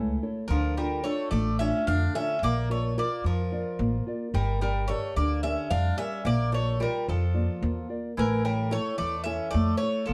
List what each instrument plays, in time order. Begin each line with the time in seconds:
Already playing: upright bass C#2, bouzouki E3 A4, nylon-string guitar A3 E4 A4 C#5
0.22 nylon-string guitar E4 A4 C#5
0.48 upright bass D2, nylon-string guitar D3, bouzouki F3 A#4
0.77 bouzouki G3 A#4, nylon-string guitar D4 F4 A4
1.04 bouzouki A3 C#5, nylon-string guitar D4 F4 A4
1.31 upright bass A1, bouzouki A3 D5, nylon-string guitar A3
1.59 bouzouki C#4 E5, nylon-string guitar D4 F4 A4
1.87 upright bass F2, nylon-string guitar D3, bouzouki D4 F5
2.14 bouzouki C#4 E5, nylon-string guitar D4 F4 A4
2.42 upright bass A#1, nylon-string guitar A#3, bouzouki A#3 D5
2.70 bouzouki A3 C#5, nylon-string guitar F4 A#4 D5
2.97 bouzouki A#3 D5, nylon-string guitar F4 A#4 D5
3.24 upright bass F2, nylon-string guitar F3, bouzouki F3 A#4
3.52 nylon-string guitar F4 A#4 D5
3.79 upright bass A1, nylon-string guitar A#3
4.07 nylon-string guitar F4 A#4 D5
4.34 upright bass G1, nylon-string guitar G3, bouzouki G3 A#4
4.61 bouzouki G3 A#4, nylon-string guitar G4 A#4 D5
4.88 bouzouki A3 C#5, nylon-string guitar G4 A#4 D5
5.16 upright bass D2, nylon-string guitar D3, bouzouki A#3 D5
5.43 bouzouki C#4 E5, nylon-string guitar G4 A#4 D5
5.70 upright bass F2, nylon-string guitar G3, bouzouki D4 F5
5.97 bouzouki C#4 E5, nylon-string guitar G4 A#4 D5
6.25 upright bass A#1, bouzouki A#3 D5, nylon-string guitar A#3
6.52 bouzouki A3 C#5, nylon-string guitar F4 A#4 D5
6.80 bouzouki G3 A#4, nylon-string guitar F4 A#4 D5
7.08 upright bass F2, nylon-string guitar F3, bouzouki F3 A4
7.34 nylon-string guitar A#3 F4 D5
7.61 upright bass E2, nylon-string guitar A#3
7.89 nylon-string guitar F4 A#4 D5
8.17 upright bass A1, bouzouki E3 A#4, nylon-string guitar A3
8.44 bouzouki G3 A#4, nylon-string guitar E4 A4 C#5
8.71 bouzouki A3 C#5, nylon-string guitar E4 A4 C#5
8.98 upright bass E2, nylon-string guitar E3, bouzouki A3 D5
9.24 bouzouki C#4 E5, nylon-string guitar E4 A4 C#5
9.51 upright bass F2, bouzouki A3 D5, nylon-string guitar A3
9.77 bouzouki A3 C#5
9.81 nylon-string guitar E4 A4 C#5
10.06 upright bass A#1, bouzouki F3 A4, nylon-string guitar A#3